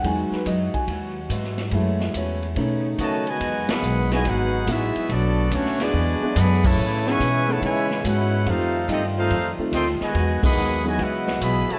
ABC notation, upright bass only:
X:1
M:4/4
L:1/8
Q:"Swing" 1/4=142
K:E
V:1 name="Upright bass" clef=bass
E,, z F,, z D,,2 G,,2 | F,,2 E,,2 B,,2 C,2 | E,, z B,,,2 G,,,2 A,,, z | B,,,2 =D,,2 E,, z F,,2 |
A,,2 B,,2 C,2 G,,2 | =F,,2 =G,,2 F,, z =D,, z | E,, z D,,2 C,,2 B,,, z |]